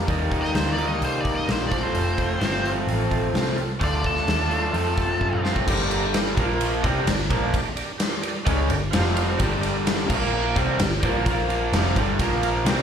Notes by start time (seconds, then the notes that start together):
0.07 D#2 D#3 G3 A#3 D#4 G4 A#4, kick, open hi-hat
0.30 A#3 D#4 G4 A#4, kick, open hi-hat
0.42 D#5, snare
0.55 D2 A#3 D#4 G4 A#4 C5, snare, open hi-hat
0.72 D5
0.78 D#3 G3 A#3 D#4 G4 A#4, open hi-hat
0.88 D#5
1.01 C2 A#3 D#4 G4 A4 C5, open hi-hat
1.21 A#3 D#4 G4 A#4 D5
1.25 kick, open hi-hat
1.35 D#5
1.46 A#1 A#3 D#4 G4 A#4, snare, open hi-hat
1.52 C5
1.67 F3 C4 F4 D5
1.71 A3 C4 F4 A4, kick, open hi-hat
1.82 C5
1.95 F1, open hi-hat
2.18 A3 C4 F4 A4, kick, open hi-hat
2.39 G1 F3 A3 C4 F4 A4, snare, open hi-hat
2.63 A3 C4 F4 G4, open hi-hat
2.87 A1 A3 C4 F4 A4, open hi-hat
3.11 A3 C4 F4 A4, kick, open hi-hat
3.34 C2 A3 C4 F4 G4, snare, open hi-hat
3.56 A3 C4 F4 A4, open hi-hat
3.79 D2 D3 A3 D4 F4 A4, kick, open hi-hat
3.83 F4 D5
4.01 A3 D4 F4 A4, kick, open hi-hat
4.06 A4
4.16 snare
4.24 A3 D4 F4 A4, open hi-hat
4.28 D#2, snare
4.47 A3 D4 F4 A4, open hi-hat
4.52 D3 A3
4.72 F2 F3 A3 C4 F4 A4, open hi-hat
4.76 F4
4.94 A3 C4 F4 A4, kick, open hi-hat
5.19 F#2 A3 C4 F4 A4, kick
5.33 mid tom
5.42 F3 A3 C4 F4 A4, snare
5.56 kick
5.67 G1 G2 D3 G3 A#3 D4 G4 A#4, kick, crash
5.89 A#3 D4 G4 A#4, ride
6.13 A#3 D4 G4 A#4, snare, ride
6.37 A#1 A#2 F3 A#3 F4 A#4 F5, kick, ride
6.61 ride
6.83 C2 C3 G3 C4 D4 G4 A#4 D5, kick, ride
7.07 G1 G2 D3, snare, ride
7.30 A#1 A#2 F3 A#3 D4 G4 A#4 D5, kick, ride
7.54 D4 G4 A#4 D5, kick, ride
7.76 D4 G4 A#4 D5, ride
7.98 D4 G4 A#4 C5, snare, ride
8.20 D4 G4 A#4 D5, ride
8.43 C#2 C#3 G#3 C#4 D4 G4 A#4 D5, kick, ride
8.66 G1 G2 D3 D4 G4 A#4 D5, ride
8.91 F1 F2 C3 F3 C4 F4 C5 F5, snare, ride
9.14 C4 F4 C5 F5, ride
9.37 G1 G2 D3 G3 D4 G4 A#4 D5, kick, ride
9.61 D4 G4 A#4 D5, ride
9.84 D4 G4 A#4 C5, snare, ride
10.07 A#1 A#2 F3 A#3 F4 A#4 F5, kick, crash
10.54 C2 C3 G3 C4 D4 G4 A#4 D5, kick, ride
10.79 G1 G2 D3, snare, ride
11.00 A#1 A#2 D4 G4 A#4 D5, kick, ride
11.04 F3 A#3
11.23 A#1 A#2 A#3 F4 A#4 F5, kick, ride
11.28 F3 A#3
11.48 A#3 F4 A#4 F5, ride
11.72 F1 F2 C3 F3 D4 G4 A#4 D5, snare, ride
11.96 G1 G2 D3 G3 D4 G4 A#4 D5, kick, ride
12.19 A#1 A#2 F3 A#3 F4 A#4 F5, kick, ride
12.43 A#3 F4 A#4 F5, ride
12.65 C2 C3 G3 C4 D4 G4 A#4 D5, snare, ride